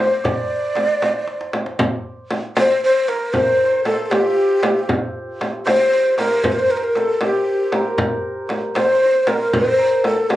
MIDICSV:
0, 0, Header, 1, 5, 480
1, 0, Start_track
1, 0, Tempo, 515021
1, 238, Time_signature, 6, 3, 24, 8
1, 9656, End_track
2, 0, Start_track
2, 0, Title_t, "Santur"
2, 0, Program_c, 0, 15
2, 0, Note_on_c, 0, 70, 58
2, 0, Note_on_c, 0, 72, 75
2, 0, Note_on_c, 0, 74, 90
2, 218, Note_off_c, 0, 74, 0
2, 222, Note_on_c, 0, 74, 84
2, 944, Note_off_c, 0, 70, 0
2, 2391, Note_off_c, 0, 72, 0
2, 2395, Note_on_c, 0, 72, 90
2, 2517, Note_off_c, 0, 74, 0
2, 2638, Note_off_c, 0, 72, 0
2, 2642, Note_on_c, 0, 72, 81
2, 2874, Note_on_c, 0, 70, 74
2, 3113, Note_off_c, 0, 72, 0
2, 3117, Note_on_c, 0, 72, 93
2, 3173, Note_off_c, 0, 72, 0
2, 3177, Note_on_c, 0, 72, 63
2, 3247, Note_off_c, 0, 72, 0
2, 3251, Note_on_c, 0, 72, 68
2, 3311, Note_off_c, 0, 72, 0
2, 3315, Note_on_c, 0, 72, 61
2, 3389, Note_off_c, 0, 72, 0
2, 3393, Note_on_c, 0, 72, 84
2, 3464, Note_off_c, 0, 72, 0
2, 3468, Note_on_c, 0, 72, 68
2, 3606, Note_on_c, 0, 69, 72
2, 3662, Note_off_c, 0, 70, 0
2, 3845, Note_on_c, 0, 67, 63
2, 3899, Note_on_c, 0, 65, 52
2, 3963, Note_off_c, 0, 67, 0
2, 3966, Note_on_c, 0, 67, 65
2, 5268, Note_off_c, 0, 72, 0
2, 5271, Note_on_c, 0, 72, 100
2, 5513, Note_off_c, 0, 72, 0
2, 5517, Note_on_c, 0, 72, 90
2, 5759, Note_on_c, 0, 70, 75
2, 5815, Note_off_c, 0, 69, 0
2, 5994, Note_off_c, 0, 72, 0
2, 5997, Note_on_c, 0, 72, 99
2, 6118, Note_off_c, 0, 72, 0
2, 6122, Note_on_c, 0, 72, 81
2, 6238, Note_off_c, 0, 70, 0
2, 6241, Note_on_c, 0, 70, 77
2, 6354, Note_off_c, 0, 70, 0
2, 6357, Note_on_c, 0, 70, 66
2, 6481, Note_on_c, 0, 69, 73
2, 6537, Note_off_c, 0, 70, 0
2, 6717, Note_off_c, 0, 67, 0
2, 6721, Note_on_c, 0, 67, 78
2, 7039, Note_off_c, 0, 65, 0
2, 7202, Note_on_c, 0, 70, 65
2, 7258, Note_off_c, 0, 69, 0
2, 8159, Note_off_c, 0, 72, 0
2, 8163, Note_on_c, 0, 72, 84
2, 8228, Note_off_c, 0, 72, 0
2, 8232, Note_on_c, 0, 72, 70
2, 8302, Note_off_c, 0, 72, 0
2, 8306, Note_on_c, 0, 72, 75
2, 8371, Note_off_c, 0, 72, 0
2, 8375, Note_on_c, 0, 72, 64
2, 8436, Note_off_c, 0, 72, 0
2, 8439, Note_on_c, 0, 72, 75
2, 8492, Note_off_c, 0, 72, 0
2, 8496, Note_on_c, 0, 72, 62
2, 8635, Note_off_c, 0, 70, 0
2, 8639, Note_on_c, 0, 70, 79
2, 8876, Note_off_c, 0, 72, 0
2, 8880, Note_on_c, 0, 72, 84
2, 9114, Note_off_c, 0, 70, 0
2, 9118, Note_on_c, 0, 70, 87
2, 9351, Note_on_c, 0, 69, 75
2, 9407, Note_off_c, 0, 70, 0
2, 9590, Note_off_c, 0, 67, 0
2, 9593, Note_on_c, 0, 67, 65
2, 9656, Note_off_c, 0, 67, 0
2, 9656, Note_off_c, 0, 69, 0
2, 9656, Note_off_c, 0, 72, 0
2, 9656, End_track
3, 0, Start_track
3, 0, Title_t, "Ney"
3, 0, Program_c, 1, 77
3, 0, Note_on_c, 1, 72, 86
3, 240, Note_on_c, 1, 74, 87
3, 254, Note_off_c, 1, 72, 0
3, 1441, Note_off_c, 1, 74, 0
3, 2400, Note_on_c, 1, 72, 112
3, 2623, Note_off_c, 1, 72, 0
3, 2646, Note_on_c, 1, 72, 102
3, 2877, Note_on_c, 1, 70, 88
3, 2891, Note_off_c, 1, 72, 0
3, 3104, Note_on_c, 1, 72, 94
3, 3118, Note_off_c, 1, 70, 0
3, 3576, Note_off_c, 1, 72, 0
3, 3581, Note_on_c, 1, 69, 90
3, 3781, Note_off_c, 1, 69, 0
3, 3781, Note_on_c, 1, 69, 61
3, 3827, Note_on_c, 1, 67, 75
3, 3841, Note_off_c, 1, 69, 0
3, 4554, Note_off_c, 1, 67, 0
3, 5281, Note_on_c, 1, 72, 104
3, 5727, Note_off_c, 1, 72, 0
3, 5759, Note_on_c, 1, 70, 94
3, 6006, Note_on_c, 1, 72, 83
3, 6020, Note_off_c, 1, 70, 0
3, 6079, Note_on_c, 1, 70, 83
3, 6093, Note_off_c, 1, 72, 0
3, 6143, Note_on_c, 1, 72, 109
3, 6157, Note_off_c, 1, 70, 0
3, 6254, Note_on_c, 1, 70, 88
3, 6268, Note_off_c, 1, 72, 0
3, 6310, Note_on_c, 1, 72, 75
3, 6324, Note_off_c, 1, 70, 0
3, 6371, Note_on_c, 1, 70, 77
3, 6385, Note_off_c, 1, 72, 0
3, 6499, Note_on_c, 1, 69, 82
3, 6513, Note_off_c, 1, 70, 0
3, 6729, Note_off_c, 1, 69, 0
3, 6746, Note_on_c, 1, 67, 76
3, 7415, Note_off_c, 1, 67, 0
3, 8167, Note_on_c, 1, 72, 92
3, 8650, Note_on_c, 1, 70, 92
3, 8664, Note_off_c, 1, 72, 0
3, 8895, Note_on_c, 1, 72, 91
3, 8909, Note_off_c, 1, 70, 0
3, 9367, Note_off_c, 1, 72, 0
3, 9377, Note_on_c, 1, 69, 85
3, 9599, Note_on_c, 1, 67, 86
3, 9613, Note_off_c, 1, 69, 0
3, 9656, Note_off_c, 1, 67, 0
3, 9656, End_track
4, 0, Start_track
4, 0, Title_t, "Frame drum"
4, 232, Note_on_c, 9, 64, 80
4, 325, Note_off_c, 9, 64, 0
4, 713, Note_on_c, 9, 64, 56
4, 806, Note_off_c, 9, 64, 0
4, 953, Note_on_c, 9, 64, 60
4, 1047, Note_off_c, 9, 64, 0
4, 1429, Note_on_c, 9, 64, 61
4, 1523, Note_off_c, 9, 64, 0
4, 1669, Note_on_c, 9, 64, 93
4, 1762, Note_off_c, 9, 64, 0
4, 2149, Note_on_c, 9, 64, 65
4, 2242, Note_off_c, 9, 64, 0
4, 2392, Note_on_c, 9, 64, 76
4, 2485, Note_off_c, 9, 64, 0
4, 3109, Note_on_c, 9, 64, 76
4, 3202, Note_off_c, 9, 64, 0
4, 3592, Note_on_c, 9, 64, 70
4, 3685, Note_off_c, 9, 64, 0
4, 3833, Note_on_c, 9, 64, 76
4, 3926, Note_off_c, 9, 64, 0
4, 4317, Note_on_c, 9, 64, 76
4, 4410, Note_off_c, 9, 64, 0
4, 4559, Note_on_c, 9, 64, 79
4, 4652, Note_off_c, 9, 64, 0
4, 5046, Note_on_c, 9, 64, 61
4, 5140, Note_off_c, 9, 64, 0
4, 5287, Note_on_c, 9, 64, 70
4, 5381, Note_off_c, 9, 64, 0
4, 5767, Note_on_c, 9, 64, 61
4, 5860, Note_off_c, 9, 64, 0
4, 6003, Note_on_c, 9, 64, 79
4, 6096, Note_off_c, 9, 64, 0
4, 6484, Note_on_c, 9, 64, 47
4, 6577, Note_off_c, 9, 64, 0
4, 6717, Note_on_c, 9, 64, 64
4, 6810, Note_off_c, 9, 64, 0
4, 7200, Note_on_c, 9, 64, 60
4, 7293, Note_off_c, 9, 64, 0
4, 7439, Note_on_c, 9, 64, 86
4, 7533, Note_off_c, 9, 64, 0
4, 7922, Note_on_c, 9, 64, 64
4, 8015, Note_off_c, 9, 64, 0
4, 8166, Note_on_c, 9, 64, 73
4, 8259, Note_off_c, 9, 64, 0
4, 8639, Note_on_c, 9, 64, 74
4, 8733, Note_off_c, 9, 64, 0
4, 8886, Note_on_c, 9, 64, 88
4, 8979, Note_off_c, 9, 64, 0
4, 9360, Note_on_c, 9, 64, 64
4, 9453, Note_off_c, 9, 64, 0
4, 9601, Note_on_c, 9, 64, 71
4, 9656, Note_off_c, 9, 64, 0
4, 9656, End_track
5, 0, Start_track
5, 0, Title_t, "Tombak"
5, 229, Note_on_c, 9, 64, 88
5, 322, Note_off_c, 9, 64, 0
5, 703, Note_on_c, 9, 63, 61
5, 797, Note_off_c, 9, 63, 0
5, 955, Note_on_c, 9, 63, 79
5, 1049, Note_off_c, 9, 63, 0
5, 1189, Note_on_c, 9, 63, 53
5, 1282, Note_off_c, 9, 63, 0
5, 1312, Note_on_c, 9, 62, 65
5, 1405, Note_off_c, 9, 62, 0
5, 1429, Note_on_c, 9, 63, 69
5, 1522, Note_off_c, 9, 63, 0
5, 1549, Note_on_c, 9, 62, 71
5, 1642, Note_off_c, 9, 62, 0
5, 1671, Note_on_c, 9, 64, 85
5, 1764, Note_off_c, 9, 64, 0
5, 2152, Note_on_c, 9, 63, 60
5, 2245, Note_off_c, 9, 63, 0
5, 2394, Note_on_c, 9, 63, 73
5, 2488, Note_off_c, 9, 63, 0
5, 2633, Note_on_c, 9, 62, 25
5, 2726, Note_off_c, 9, 62, 0
5, 2873, Note_on_c, 9, 63, 69
5, 2966, Note_off_c, 9, 63, 0
5, 3116, Note_on_c, 9, 64, 101
5, 3210, Note_off_c, 9, 64, 0
5, 3599, Note_on_c, 9, 63, 65
5, 3692, Note_off_c, 9, 63, 0
5, 3845, Note_on_c, 9, 63, 80
5, 3938, Note_off_c, 9, 63, 0
5, 4078, Note_on_c, 9, 62, 26
5, 4171, Note_off_c, 9, 62, 0
5, 4311, Note_on_c, 9, 63, 66
5, 4405, Note_off_c, 9, 63, 0
5, 4555, Note_on_c, 9, 64, 90
5, 4648, Note_off_c, 9, 64, 0
5, 5042, Note_on_c, 9, 63, 69
5, 5136, Note_off_c, 9, 63, 0
5, 5282, Note_on_c, 9, 63, 76
5, 5375, Note_off_c, 9, 63, 0
5, 5519, Note_on_c, 9, 62, 23
5, 5612, Note_off_c, 9, 62, 0
5, 5758, Note_on_c, 9, 63, 73
5, 5851, Note_off_c, 9, 63, 0
5, 5998, Note_on_c, 9, 64, 94
5, 6091, Note_off_c, 9, 64, 0
5, 6481, Note_on_c, 9, 63, 57
5, 6574, Note_off_c, 9, 63, 0
5, 6722, Note_on_c, 9, 63, 80
5, 6815, Note_off_c, 9, 63, 0
5, 6963, Note_on_c, 9, 62, 23
5, 7056, Note_off_c, 9, 62, 0
5, 7196, Note_on_c, 9, 63, 64
5, 7289, Note_off_c, 9, 63, 0
5, 7436, Note_on_c, 9, 64, 100
5, 7529, Note_off_c, 9, 64, 0
5, 7913, Note_on_c, 9, 63, 66
5, 8006, Note_off_c, 9, 63, 0
5, 8158, Note_on_c, 9, 63, 76
5, 8251, Note_off_c, 9, 63, 0
5, 8402, Note_on_c, 9, 62, 26
5, 8495, Note_off_c, 9, 62, 0
5, 8641, Note_on_c, 9, 63, 59
5, 8734, Note_off_c, 9, 63, 0
5, 8885, Note_on_c, 9, 64, 89
5, 8978, Note_off_c, 9, 64, 0
5, 9367, Note_on_c, 9, 63, 70
5, 9460, Note_off_c, 9, 63, 0
5, 9609, Note_on_c, 9, 63, 68
5, 9656, Note_off_c, 9, 63, 0
5, 9656, End_track
0, 0, End_of_file